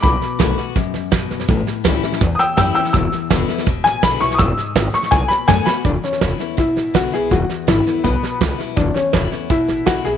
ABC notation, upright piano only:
X:1
M:4/4
L:1/8
Q:1/4=165
K:Emix
V:1 name="Upright piano"
b4 z4 | z4 z [=g^d'e'] [ge'] [ge'] | e'4 z g b c' | [^d'e']3 c' g b g b |
D C3 E2 F G | F2 E2 B,3 z | D C3 E2 F G |]